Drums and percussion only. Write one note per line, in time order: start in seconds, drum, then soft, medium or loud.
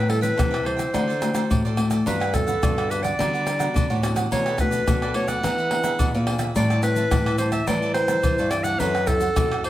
0.10 pandeiro medium
0.10 tamborim medium
0.23 pandeiro medium
0.23 shaker medium
0.39 pandeiro medium
0.39 tamborim medium
0.39 high agogo medium
0.39 shaker medium
0.39 surdo loud
0.54 pandeiro soft
0.54 tamborim medium
0.54 high agogo medium
0.54 shaker soft
0.66 pandeiro medium
0.66 high agogo medium
0.79 pandeiro medium
0.79 tamborim medium
0.79 shaker medium
0.94 pandeiro medium
0.94 tamborim medium
0.94 low agogo medium
0.94 shaker medium
0.94 surdo medium
1.10 pandeiro soft
1.10 shaker soft
1.22 pandeiro medium
1.22 tamborim medium
1.22 low agogo medium
1.22 shaker medium
1.35 pandeiro medium
1.35 tamborim medium
1.35 low agogo medium
1.35 shaker medium
1.51 pandeiro medium
1.51 high agogo medium
1.51 shaker medium
1.51 surdo medium
1.65 pandeiro soft
1.65 shaker soft
1.77 pandeiro medium
1.77 tamborim medium
1.77 high agogo medium
1.77 shaker medium
1.91 pandeiro medium
1.91 tamborim medium
1.91 shaker medium
2.07 pandeiro medium
2.07 low agogo medium
2.07 shaker medium
2.07 surdo medium
2.21 pandeiro soft
2.21 tamborim medium
2.21 shaker soft
2.34 pandeiro medium
2.34 tamborim medium
2.34 shaker medium
2.34 surdo medium
2.48 pandeiro medium
2.48 shaker medium
2.63 pandeiro medium
2.63 tamborim medium
2.63 high agogo medium
2.63 shaker medium
2.63 surdo loud
2.78 pandeiro soft
2.78 tamborim medium
2.78 high agogo medium
2.78 shaker soft
2.91 pandeiro medium
2.91 high agogo medium
2.91 shaker medium
3.04 pandeiro medium
3.04 tamborim medium
3.04 shaker medium
3.20 pandeiro medium
3.20 tamborim medium
3.20 low agogo medium
3.20 shaker medium
3.20 surdo medium
3.35 pandeiro soft
3.35 shaker soft
3.47 pandeiro medium
3.47 tamborim medium
3.47 low agogo medium
3.47 shaker medium
3.60 pandeiro medium
3.60 tamborim medium
3.60 low agogo medium
3.60 shaker medium
3.76 pandeiro medium
3.76 high agogo medium
3.76 shaker medium
3.76 surdo loud
3.90 pandeiro soft
3.90 shaker soft
4.03 pandeiro medium
4.03 tamborim medium
4.03 high agogo medium
4.03 shaker medium
4.16 pandeiro medium
4.16 tamborim medium
4.16 shaker medium
4.32 pandeiro medium
4.32 low agogo medium
4.32 shaker medium
4.32 surdo medium
4.46 pandeiro soft
4.46 tamborim medium
4.46 shaker soft
4.58 pandeiro medium
4.58 tamborim medium
4.58 shaker medium
4.58 surdo medium
4.72 pandeiro medium
4.72 shaker medium
4.88 pandeiro medium
4.88 tamborim medium
4.88 high agogo medium
4.88 shaker medium
4.88 surdo loud
5.02 pandeiro soft
5.02 tamborim medium
5.02 high agogo medium
5.02 shaker soft
5.14 pandeiro medium
5.14 high agogo medium
5.28 pandeiro medium
5.28 tamborim medium
5.28 shaker medium
5.44 pandeiro medium
5.44 tamborim medium
5.44 low agogo medium
5.44 shaker medium
5.44 surdo medium
5.58 pandeiro soft
5.58 shaker soft
5.71 pandeiro medium
5.71 tamborim medium
5.71 low agogo medium
5.84 pandeiro medium
5.84 tamborim medium
5.84 low agogo medium
5.84 shaker medium
5.99 pandeiro medium
5.99 high agogo medium
5.99 shaker medium
5.99 surdo medium
6.14 pandeiro soft
6.14 shaker soft
6.27 pandeiro medium
6.27 tamborim medium
6.27 high agogo medium
6.39 pandeiro medium
6.39 tamborim medium
6.39 shaker medium
6.56 pandeiro medium
6.56 low agogo medium
6.56 shaker medium
6.56 surdo medium
6.70 pandeiro soft
6.70 tamborim medium
6.70 shaker soft
6.83 pandeiro medium
6.83 tamborim medium
6.83 shaker medium
6.96 pandeiro medium
6.96 shaker medium
7.11 pandeiro medium
7.11 tamborim medium
7.11 high agogo medium
7.11 shaker medium
7.11 surdo loud
7.26 pandeiro soft
7.26 tamborim medium
7.26 high agogo medium
7.26 shaker soft
7.38 pandeiro medium
7.38 high agogo medium
7.38 shaker medium
7.52 pandeiro medium
7.52 tamborim medium
7.52 shaker medium
7.67 pandeiro medium
7.67 tamborim medium
7.67 low agogo medium
7.67 shaker medium
7.67 surdo medium
7.82 pandeiro soft
7.82 shaker soft
7.94 pandeiro medium
7.94 tamborim medium
7.94 low agogo medium
8.08 pandeiro medium
8.08 tamborim medium
8.08 low agogo medium
8.08 shaker medium
8.23 pandeiro medium
8.23 high agogo medium
8.23 shaker medium
8.23 surdo medium
8.38 pandeiro soft
8.38 shaker soft
8.51 pandeiro medium
8.51 tamborim medium
8.51 high agogo medium
8.51 shaker medium
8.64 pandeiro medium
8.64 tamborim medium
8.64 shaker medium
8.80 pandeiro medium
8.80 low agogo medium
8.80 shaker medium
8.80 surdo medium
8.95 pandeiro soft
8.95 tamborim medium
8.95 shaker soft
9.07 pandeiro medium
9.07 tamborim medium
9.07 shaker medium
9.07 surdo medium
9.20 pandeiro medium
9.20 shaker medium
9.36 pandeiro medium
9.36 tamborim medium
9.36 high agogo medium
9.36 shaker medium
9.36 surdo loud
9.52 pandeiro soft
9.52 tamborim medium
9.52 high agogo medium
9.52 shaker soft
9.64 pandeiro medium
9.64 high agogo medium